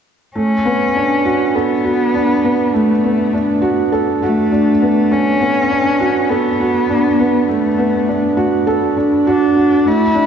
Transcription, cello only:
0.36 C#4
1.55 B3
2.75 A3
4.23 A3
5.12 C#4
6.30 B3
7.48 A3
9.27 D4
9.87 E4

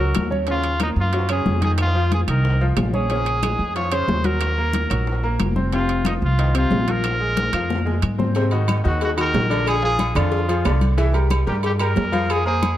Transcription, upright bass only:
Already playing: C#2
0.16 D#2
0.96 F#2
1.46 F2
2.28 C2
2.77 A#1
3.59 F2
4.08 D#2
4.91 A#1
5.40 F1
6.22 C2
6.71 A#1
7.53 F2
8.03 G#2
8.85 D#2
9.34 A#1
10.16 F2
10.66 C2
11.47 G2
11.97 F2

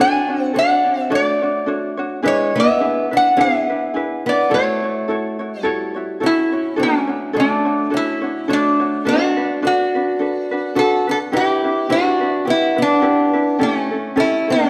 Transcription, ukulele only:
Already playing: D4 A4
0.00 F#4 C#5
0.28 D4 F#4 C#5
0.53 D4 F#4 A4 C#5
0.84 D4 F#4 C#5
1.10 D4 F#4 A4 C#5
1.42 D4 F#4 C#5
1.66 D4 F#4 A4 C#5
1.97 D4 F#4 C#5
2.22 D4 E4 G#4 B4
2.55 D4 E4 B4
2.80 D4 E4 G#4 B4
3.11 D4 E4 B4
3.37 D4 E4 G#4 B4
3.69 D4 E4 B4
3.94 D4 E4 G#4 B4
4.27 D4 E4 B4
4.50 E4 F#4 A4 C#5
4.82 E4 F#4 C#5
5.08 E4 F#4 A4 C#5
5.39 E4 F#4 C#5
5.63 E4 F#4 A4 C#5
5.94 E4 F#4 C#5
6.20 E4 F#4 A4 C#5
6.52 E4 F#4 C#5
6.76 D4 F#4 A4 C#5
7.07 D4 F#4 C#5
7.33 D4 F#4 A4 C#5
7.65 D4 F#4 C#5
7.90 D4 F#4 A4 C#5
8.22 D4 F#4 C#5
8.48 D4 F#4 A4 C#5
8.80 D4 F#4 C#5
9.05 D4 F#4 A4 B4
9.37 D4 F#4 B4
9.62 D4 F#4 A4 B4
9.95 D4 F#4 B4
10.19 D4 F#4 A4 B4
10.51 D4 F#4 B4
10.75 D4 F#4 A4 B4
11.07 D4 F#4 B4
11.32 D4 E4 G4 B4
11.64 D4 E4 B4
11.89 D4 E4 G4 B4
12.20 D4 E4 B4
12.45 D4 E4 G4 B4
12.76 D4 E4 B4
13.02 D4 E4 G4 B4
13.33 D4 E4 B4
13.59 C#4 E4 G4 A4
13.90 C#4 E4 A4
14.16 C#4 E4 G4 A4
14.47 C#4 E4 A4

